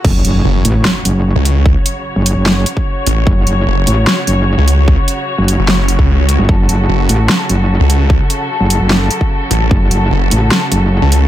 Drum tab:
CC |x---------------|----------------|----------------|----------------|
HH |--x---x---x---x-|--x---x---x---x-|--x---x---x---x-|--x---x---x---x-|
SD |--------o-------|--------o-------|--------o-------|--------o-------|
BD |o---------------|o----------o----|o---------------|o----------o----|

CC |----------------|----------------|----------------|
HH |--x---x---x---x-|--x---x---x---x-|--x---x---x---x-|
SD |--------o-------|--------o-------|--------o-------|
BD |o---------------|o----------o----|o---------------|